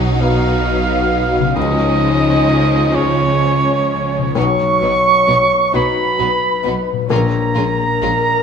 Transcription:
0.00 0.17 B1 medium
0.00 1.56 B1 medium
0.00 1.51 B2 medium
0.00 1.56 B2 medium
0.00 1.52 F#3 medium
0.00 1.53 F#3 soft
0.00 0.16 C#4 medium
0.00 1.56 D#4 soft
0.00 1.56 D#4 medium
0.00 0.18 F#4 medium
0.00 1.58 B4 soft
0.00 0.18 F#5 medium
0.19 1.55 B3 medium
0.19 1.52 D#4 soft
0.19 1.56 F#4 medium
0.19 1.52 F#4 soft
0.19 1.53 B4 soft
0.19 1.52 F5 medium
0.19 1.56 F5 medium
1.39 4.31 C#3 medium
1.43 4.33 F3 soft
1.48 4.35 C#4 soft
1.52 2.89 C#2 medium
1.52 4.36 C#3 medium
1.52 4.31 F3 medium
1.52 4.31 G#3 medium
1.52 2.90 D#4 medium
1.52 4.38 G#4 soft
1.52 2.96 D#5 medium
1.56 4.36 C#2 medium
1.56 4.32 C#4 medium
1.56 2.93 D#5 medium
2.92 4.31 C#4 soft
2.92 4.19 C#4 medium
2.92 4.32 F4 soft
2.92 4.32 G#4 soft
2.92 4.33 C#5 medium
2.92 4.36 C#5 medium
4.18 7.05 B2 medium
4.22 7.07 F#3 soft
4.27 7.09 D#4 soft
4.31 4.43 B3 medium
4.31 7.12 B4 soft
4.35 5.70 B1 medium
4.35 4.44 B1 medium
4.35 4.44 B2 medium
4.35 4.43 F#3 medium
4.35 4.43 D#4 medium
4.35 5.71 C#5 medium
4.35 5.71 C#6 medium
4.35 5.77 C#6 loud
4.81 4.91 B1 medium
4.81 4.91 B2 medium
4.81 4.89 F#3 medium
4.81 4.90 B3 soft
4.81 4.91 D#4 soft
5.27 5.37 B1 medium
5.27 5.37 B2 medium
5.27 5.35 F#3 medium
5.27 5.36 B3 medium
5.27 5.36 D#4 medium
5.73 5.82 B1 medium
5.73 5.83 B2 medium
5.73 5.81 F#3 medium
5.73 5.82 B3 medium
5.73 7.06 D#4 soft
5.73 5.81 D#4 medium
5.73 7.06 F#4 soft
5.73 7.10 B4 medium
5.73 7.07 B4 soft
5.73 6.88 B5 medium
5.73 6.84 B5 medium
6.19 6.27 B1 medium
6.19 6.28 B2 medium
6.19 6.27 F#3 medium
6.19 6.27 B3 medium
6.19 6.27 D#4 medium
6.64 6.74 B1 medium
6.64 6.73 B2 medium
6.64 6.73 F#3 medium
6.64 6.72 B3 medium
6.64 6.74 D#4 soft
6.92 8.43 A#2 medium
6.97 8.43 G#3 soft
7.01 8.43 F4 soft
7.06 8.43 A#4 medium
7.06 8.43 C#5 soft
7.10 8.43 A#1 medium
7.10 7.19 A#1 medium
7.10 7.19 A#2 medium
7.10 7.18 G#3 medium
7.10 7.18 C#4 medium
7.10 7.19 F4 medium
7.10 8.43 A#5 loud
7.10 8.43 A#5 medium
7.55 7.64 A#1 medium
7.55 7.65 A#2 medium
7.55 7.63 G#3 medium
7.55 7.64 C#4 medium
7.55 7.63 F4 medium
8.02 8.10 A#1 medium
8.02 8.10 A#2 medium
8.02 8.10 G#3 medium
8.02 8.11 C#4 medium
8.02 8.10 F4 medium

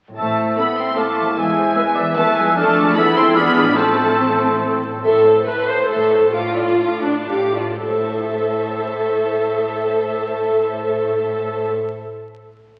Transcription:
0.08 1.40 A2 soft
0.08 1.38 C4 soft
0.08 1.28 E4 soft
0.14 0.55 A3 soft
0.14 1.34 C4 soft
0.14 1.38 A4 soft
0.14 0.99 E5 soft
0.14 0.55 A5 soft
0.14 0.99 E6 soft
0.18 0.50 A1 soft
0.18 2.53 E4 soft
0.18 0.60 C5 soft
0.18 0.55 A5 soft
0.58 0.79 B3 soft
0.58 0.88 C4 soft
0.58 0.88 A4 soft
0.58 1.39 A4 soft
0.58 0.66 B5 soft
0.58 0.78 B5 medium
0.77 0.98 C4 soft
0.77 0.97 C6 soft
0.77 0.98 C6 medium
0.97 1.37 A3 soft
0.97 1.28 C4 soft
0.97 1.28 A4 soft
0.97 1.37 F5 soft
0.97 1.38 A5 soft
0.97 1.38 A5 medium
0.97 1.37 D6 soft
1.20 2.50 E2 soft
1.25 2.52 B3 soft
1.30 2.54 E4 soft
1.34 2.56 B4 soft
1.34 1.59 B4 soft
1.34 1.97 G#5 soft
1.34 2.16 E6 soft
1.38 1.70 E2 medium
1.38 1.97 G#3 soft
1.38 2.54 B3 soft
1.38 1.75 E5 soft
1.38 1.98 G#5 medium
1.57 1.77 C5 soft
1.76 2.08 B3 soft
1.76 2.17 B4 soft
1.76 2.08 B4 soft
1.76 1.85 E5 soft
1.95 2.18 E3 soft
1.95 2.04 D5 soft
1.95 2.17 E5 medium
1.95 2.18 E5 medium
2.16 2.37 A3 medium
2.16 2.47 B3 medium
2.16 2.47 B4 medium
2.16 2.56 B4 soft
2.16 2.56 E5 soft
2.16 2.37 A5 medium
2.16 2.38 A5 medium
2.16 2.56 E6 soft
2.36 2.89 F2 soft
2.36 2.46 G#3 medium
2.36 2.56 G#5 medium
2.36 2.57 G#5 medium
2.43 2.82 A3 soft
2.48 2.93 D4 soft
2.52 2.96 D5 soft
2.52 2.96 A5 medium
2.57 2.93 F2 medium
2.57 2.96 A3 medium
2.57 3.33 A3 medium
2.57 2.94 D4 medium
2.57 2.94 A4 medium
2.57 2.98 D5 medium
2.57 2.96 A5 medium
2.57 2.93 F6 medium
2.78 3.17 E2 medium
2.83 3.31 A3 soft
2.87 3.67 E4 soft
2.92 3.32 E4 medium
2.92 3.36 C5 soft
2.92 3.16 B5 medium
2.92 3.37 E6 medium
2.96 3.78 E2 medium
2.96 3.16 B3 medium
2.96 3.36 E4 medium
2.96 3.36 A4 medium
2.96 3.38 A4 medium
2.96 3.38 E5 medium
2.96 3.16 B5 medium
3.16 3.70 E2 medium
3.16 3.36 C4 medium
3.16 3.36 C6 medium
3.16 3.25 C6 medium
3.22 3.73 G#3 soft
3.27 3.75 F4 soft
3.31 3.77 D5 soft
3.36 3.75 G#3 medium
3.36 3.77 B3 medium
3.36 3.78 D4 medium
3.36 3.75 D4 medium
3.36 3.78 G#4 medium
3.36 3.79 G#4 medium
3.36 3.78 D5 medium
3.36 3.77 B5 medium
3.36 3.78 B5 medium
3.36 3.77 F6 medium
3.59 4.86 A2 soft
3.64 4.91 A3 soft
3.68 4.96 E4 soft
3.73 5.00 C5 soft
3.73 4.83 C5 soft
3.77 4.82 A1 medium
3.77 4.61 A3 medium
3.77 4.79 A3 medium
3.77 4.79 C4 medium
3.77 4.84 C4 medium
3.77 4.83 A4 medium
3.77 4.84 A4 medium
3.77 4.61 A5 medium
3.77 4.63 A5 medium
3.77 4.81 E6 soft
4.87 6.15 A2 soft
4.92 6.20 A3 soft
4.97 6.32 E4 soft
5.01 5.44 A4 medium
5.01 6.34 C5 soft
5.01 5.24 E5 soft
5.05 5.42 A2 soft
5.05 5.25 A4 soft
5.05 5.25 C6 soft
5.25 5.47 C5 soft
5.25 5.48 A5 soft
5.46 5.85 A2 soft
5.46 5.68 A4 soft
5.46 5.68 B4 medium
5.46 5.68 E5 soft
5.46 5.69 C6 soft
5.68 5.90 C5 medium
5.68 5.91 C5 soft
5.68 5.90 A5 soft
5.89 6.29 A2 soft
5.89 6.33 A4 medium
5.89 6.11 A4 soft
5.89 6.10 E5 soft
5.89 6.10 C6 soft
6.11 6.34 C5 soft
6.11 6.34 A5 soft
6.17 7.76 A2 soft
6.21 7.88 A3 soft
6.26 7.81 D4 soft
6.30 6.54 A4 soft
6.30 7.83 D5 soft
6.30 6.55 F5 soft
6.34 6.75 A2 soft
6.34 7.02 F4 medium
6.34 6.55 D6 soft
6.55 6.79 D5 soft
6.55 6.79 A5 soft
6.78 7.23 A2 soft
6.78 7.03 A4 soft
6.78 7.03 F5 soft
6.78 7.04 D6 soft
7.02 7.29 D4 soft
7.02 7.28 D5 soft
7.02 7.29 A5 soft
7.28 7.76 A2 soft
7.28 7.56 G4 soft
7.28 7.53 A4 soft
7.28 7.53 F5 soft
7.28 7.54 D6 soft
7.55 7.82 F4 soft
7.55 7.83 D5 soft
7.55 7.82 A5 soft
7.81 11.72 A2 soft
7.81 11.71 A2 soft
7.81 11.71 A4 soft
7.81 11.70 C5 soft
7.81 11.69 E5 soft
7.81 11.71 A5 soft
7.89 11.77 A3 soft
7.96 11.85 E4 soft
8.04 11.92 C5 soft
8.10 11.98 E5 soft

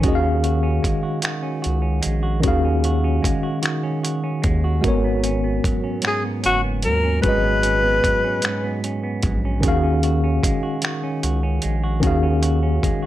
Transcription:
0.00 0.13 G#2 medium
0.00 2.38 D#3 medium
0.00 1.23 D#3 medium
0.00 0.12 B3 medium
0.00 0.22 C#4 medium
0.00 2.39 C#4 medium
0.00 0.43 F#4 medium
0.00 kick medium
0.00 closed hi-hat medium
0.05 0.80 D#2 medium
0.05 2.40 F#4 medium
0.05 2.41 G#4 medium
0.05 0.12 D#5 medium
0.15 2.45 F5 medium
0.23 0.63 C#4 medium
0.44 1.03 F#4 medium
0.44 closed hi-hat soft
0.63 1.42 C#4 medium
0.83 0.93 C#2 soft
0.83 2.01 G#3 soft
0.83 kick medium
0.83 closed hi-hat medium
1.03 1.23 F#4 soft
1.22 2.43 D#3 medium
1.22 1.62 F#4 medium
1.22 finger snap loud
1.22 closed hi-hat medium
1.43 1.82 C#4 medium
1.62 2.01 C#2 medium
1.62 2.22 F#4 medium
1.62 closed hi-hat medium
1.82 2.64 C#4 soft
2.02 3.22 G#3 medium
2.02 closed hi-hat medium
2.06 2.46 A#1 medium
2.23 2.43 F#4 medium
2.40 4.78 D#3 medium
2.40 3.62 D#3 medium
2.40 4.79 C#4 medium
2.40 2.85 F#4 soft
2.40 4.80 F#4 medium
2.40 kick loud
2.40 closed hi-hat medium
2.45 3.20 D#2 loud
2.45 4.81 G#4 medium
2.45 4.82 F5 medium
2.65 3.04 C#4 medium
2.84 3.43 F#4 medium
2.84 closed hi-hat soft
3.04 3.83 C#4 medium
3.22 3.33 D#2 soft
3.22 4.42 G#3 medium
3.22 kick medium
3.22 closed hi-hat medium
3.43 3.62 F#4 soft
3.62 5.27 D#3 medium
3.62 4.03 F#4 medium
3.62 finger snap medium
3.62 closed hi-hat medium
3.83 4.23 C#4 medium
4.03 4.64 F#4 soft
4.03 closed hi-hat medium
4.24 4.85 C#4 medium
4.42 4.80 D#2 medium
4.42 5.04 G#3 soft
4.42 kick medium
4.42 closed hi-hat medium
4.64 6.06 F#4 medium
4.81 5.60 G#1 medium
4.81 6.02 G#2 medium
4.81 7.18 G#3 medium
4.81 5.23 C#4 soft
4.81 7.19 F#4 medium
4.81 7.20 A#4 medium
4.81 kick loud
4.81 closed hi-hat medium
4.86 7.21 B3 medium
4.86 7.22 C#5 medium
5.04 5.43 B3 soft
5.24 5.83 C#4 medium
5.24 closed hi-hat soft
5.44 6.23 B3 medium
5.64 5.73 F#1 soft
5.64 6.83 F#3 medium
5.64 kick medium
5.64 closed hi-hat medium
5.84 6.03 C#4 soft
6.02 7.22 G#2 medium
6.02 6.43 C#4 medium
6.02 finger snap loud
6.02 closed hi-hat medium
6.07 6.23 G#4 medium
6.24 6.63 B3 soft
6.43 6.87 F#1 medium
6.43 7.03 C#4 medium
6.43 6.61 F#4 medium
6.43 closed hi-hat soft
6.64 7.41 B3 medium
6.83 7.20 D#2 medium
6.83 8.03 F#3 medium
6.83 7.21 A#4 medium
6.83 closed hi-hat medium
7.03 7.23 C#4 medium
7.21 8.00 G#1 medium
7.21 8.42 G#2 medium
7.21 9.58 G#3 medium
7.21 7.62 C#4 medium
7.21 9.60 F#4 medium
7.21 9.60 G#4 medium
7.21 8.79 B4 medium
7.21 kick loud
7.21 closed hi-hat medium
7.27 9.61 B4 medium
7.27 9.62 D#5 medium
7.43 7.82 B3 medium
7.63 8.24 C#4 medium
7.63 closed hi-hat soft
7.83 8.62 B3 medium
8.03 8.12 A#1 soft
8.03 9.22 F#3 soft
8.03 kick medium
8.03 closed hi-hat medium
8.24 8.44 C#4 soft
8.42 9.72 G#2 medium
8.42 8.83 C#4 medium
8.42 finger snap loud
8.42 closed hi-hat medium
8.63 9.02 B3 medium
8.84 9.45 C#4 medium
8.84 closed hi-hat medium
9.03 9.72 B3 medium
9.23 9.66 A#1 medium
9.23 9.63 F#3 soft
9.23 kick medium
9.23 closed hi-hat medium
9.45 9.83 C#4 medium
9.61 10.40 D#2 medium
9.61 11.98 D#3 medium
9.61 10.84 D#3 medium
9.61 11.99 C#4 medium
9.61 12.00 F#4 medium
9.61 10.04 F#4 medium
9.61 kick loud
9.61 closed hi-hat medium
9.66 12.01 G#4 medium
9.66 12.02 F5 medium
9.83 10.23 C#4 medium
10.03 10.63 F#4 medium
10.03 closed hi-hat soft
10.24 11.03 C#4 medium
10.43 10.52 C#2 soft
10.43 11.63 G#3 medium
10.43 kick medium
10.43 closed hi-hat medium
10.63 10.84 F#4 soft
10.82 12.03 D#3 medium
10.82 11.23 F#4 medium
10.82 finger snap loud
10.82 closed hi-hat medium
11.03 11.43 C#4 medium
11.23 11.60 C#2 medium
11.23 11.83 F#4 medium
11.23 closed hi-hat medium
11.43 12.23 C#4 medium
11.62 12.05 A#1 medium
11.62 12.83 G#3 medium
11.62 closed hi-hat medium
11.84 12.04 F#4 medium
12.00 12.79 D#2 loud
12.00 13.06 D#3 medium
12.00 13.06 C#4 medium
12.00 kick medium
12.00 closed hi-hat medium
12.04 13.06 F#4 medium
12.04 12.42 F#4 medium
12.04 13.06 G#4 medium
12.04 13.06 F5 medium
12.23 12.62 C#4 medium
12.42 13.02 F#4 medium
12.42 closed hi-hat soft
12.63 13.06 C#4 soft
12.83 12.92 D#2 soft
12.83 13.06 G#3 medium
12.83 kick medium
12.83 closed hi-hat medium
13.03 13.06 F#4 soft

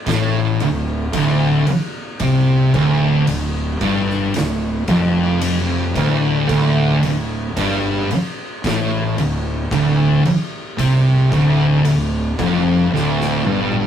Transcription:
0.06 0.56 A1 medium
0.06 0.59 A2 loud
0.06 kick medium
0.06 snare loud
0.06 ride medium
0.60 1.11 D1 medium
0.60 1.04 D2 medium
0.60 ride medium
1.13 1.63 D1 loud
1.13 1.66 D2 medium
1.13 kick loud
1.13 ride loud
1.67 muted fingered electric bass stroke soft
1.67 muted distorted electric guitar stroke medium
1.67 ride medium
2.20 2.70 C2 medium
2.20 2.74 C3 loud
2.20 kick loud
2.20 ride medium
2.74 3.24 D1 medium
2.74 3.27 D2 loud
2.74 kick loud
2.74 ride medium
3.27 3.78 D1 medium
3.27 3.71 D2 medium
3.27 ride medium
3.81 4.31 G1 loud
3.81 4.34 G2 loud
3.81 kick loud
3.81 ride medium
4.10 snare soft
4.34 4.85 D1 medium
4.34 4.78 D2 medium
4.34 snare loud
4.34 ride loud
4.88 5.92 F1 loud
4.88 5.95 F2 loud
4.88 kick loud
4.88 ride medium
5.41 ride loud
5.96 6.46 D1 medium
5.96 6.48 D2 loud
5.96 kick loud
5.96 ride medium
6.49 6.99 D1 medium
6.49 7.02 D2 loud
6.49 kick loud
6.49 ride loud
7.03 7.53 D1 medium
7.03 7.47 D2 medium
7.03 ride medium
7.56 8.06 G1 medium
7.56 8.10 G2 medium
7.56 kick loud
7.56 ride loud
8.10 muted fingered electric bass stroke soft
8.10 muted distorted electric guitar stroke medium
8.10 ride medium
8.64 9.14 A1 medium
8.64 9.17 A2 loud
8.64 kick loud
8.64 snare loud
8.64 ride medium
9.17 9.67 D1 medium
9.17 9.61 D2 medium
9.17 ride medium
9.71 10.21 D1 loud
9.71 10.24 D2 loud
9.71 kick loud
9.71 ride medium
10.25 muted fingered electric bass stroke soft
10.25 muted distorted electric guitar stroke medium
10.25 ride medium
10.78 11.28 C2 medium
10.78 11.30 C3 loud
10.78 kick loud
10.78 ride loud
11.32 11.82 D1 medium
11.32 11.84 D2 loud
11.32 kick loud
11.32 ride medium
11.85 12.35 D1 medium
11.85 12.29 D2 medium
11.85 ride medium
12.39 12.89 F1 loud
12.39 12.91 F2 loud
12.39 kick loud
12.39 ride medium
12.92 13.42 D1 medium
12.92 13.44 D2 loud
12.92 snare medium
13.21 snare medium
13.45 13.87 G1 medium
13.45 13.87 G2 medium
13.45 high tom medium
13.72 high tom medium

